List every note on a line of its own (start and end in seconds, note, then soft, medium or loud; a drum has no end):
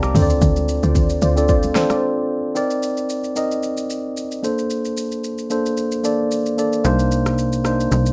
0.00 0.13 C2 loud
0.00 0.14 C4 loud
0.00 0.17 D#4 loud
0.00 0.16 G4 loud
0.00 0.16 A#4 loud
0.00 0.17 D5 loud
0.00 0.17 F5 medium
0.00 0.17 G5 medium
0.00 0.16 A5 medium
0.00 0.04 A#5 medium
0.00 0.29 A#5 medium
0.00 0.28 D6 medium
0.00 cross-stick loud
0.00 high conga medium
0.00 shaker medium
0.14 0.39 D2 loud
0.14 1.01 C4 loud
0.14 1.01 D4 medium
0.14 0.30 F4 medium
0.14 1.01 F4 medium
0.14 1.01 A4 medium
0.14 0.30 C5 medium
0.14 0.22 C5 medium
0.14 0.30 D5 medium
0.14 mid tom loud
0.14 open hi-hat medium
0.14 low conga medium
0.14 shaker medium
0.22 1.05 D5 loud
0.30 shaker medium
0.41 0.80 D2 loud
0.41 kick loud
0.41 low conga medium
0.41 shaker medium
0.56 high conga medium
0.56 shaker medium
0.69 shaker medium
0.83 1.19 D2 medium
0.83 1.19 F4 medium
0.83 1.19 C5 medium
0.83 1.19 D5 medium
0.83 shaker soft
0.95 kick medium
0.95 low conga medium
0.95 shaker medium
1.10 shaker soft
1.22 1.72 D2 medium
1.22 1.47 F4 medium
1.22 1.47 C5 medium
1.22 1.47 D5 medium
1.22 shaker medium
1.36 1.68 C4 medium
1.36 1.68 D4 medium
1.36 1.68 F4 medium
1.36 1.69 A4 medium
1.36 1.69 D5 medium
1.36 shaker soft
1.48 1.87 F4 medium
1.48 1.87 C5 medium
1.48 1.87 D5 loud
1.48 kick loud
1.48 shaker medium
1.63 high conga medium
1.63 shaker medium
1.75 2.41 C4 medium
1.75 2.41 D4 medium
1.75 2.41 F4 medium
1.75 2.41 A4 medium
1.75 2.41 C5 loud
1.75 cross-stick loud
1.75 snare medium
1.75 high conga medium
1.75 shaker loud
1.90 2.02 F4 medium
1.90 2.02 C5 medium
1.90 2.02 D5 medium
1.90 cross-stick medium
1.90 high conga medium
1.90 shaker medium
2.55 3.21 C4 loud
2.55 3.21 D#4 medium
2.55 3.22 A#4 medium
2.55 3.22 D5 loud
2.55 shaker medium
2.70 shaker soft
2.83 shaker medium
2.97 shaker soft
3.10 shaker medium
3.24 shaker soft
3.36 4.22 C4 medium
3.36 4.22 D#4 medium
3.36 4.23 A#4 medium
3.36 4.23 D#5 medium
3.36 shaker medium
3.51 shaker soft
3.63 shaker medium
3.77 shaker medium
3.90 shaker medium
4.17 shaker medium
4.32 shaker soft
4.43 5.29 A#3 medium
4.43 5.30 D4 medium
4.43 5.30 A4 medium
4.43 5.30 C5 loud
4.43 shaker medium
4.58 shaker medium
4.70 shaker medium
4.85 shaker medium
4.97 shaker medium
5.12 shaker soft
5.24 shaker medium
5.38 shaker soft
5.50 5.94 A#3 medium
5.50 5.94 D4 medium
5.50 5.95 A4 medium
5.50 5.95 C5 medium
5.50 shaker medium
5.66 shaker soft
5.77 shaker medium
5.92 shaker medium
6.03 6.48 A#3 medium
6.03 6.48 D4 medium
6.03 6.48 A4 medium
6.03 6.49 D5 loud
6.03 shaker medium
6.31 shaker medium
6.46 shaker soft
6.57 6.79 A#3 medium
6.57 6.80 D4 medium
6.57 6.80 A4 medium
6.57 6.80 D5 medium
6.57 shaker medium
6.73 shaker medium
6.84 7.88 C2 loud
6.84 7.50 A#3 loud
6.84 7.50 D4 loud
6.84 7.50 D#4 medium
6.84 7.50 C5 loud
6.84 shaker medium
6.99 shaker medium
7.12 shaker medium
7.26 cross-stick medium
7.26 shaker soft
7.38 shaker medium
7.53 shaker soft
7.64 8.13 A#3 medium
7.64 8.13 D4 medium
7.64 8.13 D#4 medium
7.64 8.13 C5 medium
7.64 cross-stick medium
7.64 shaker medium
7.80 shaker soft
7.92 8.13 C2 loud
7.92 shaker medium
8.06 shaker medium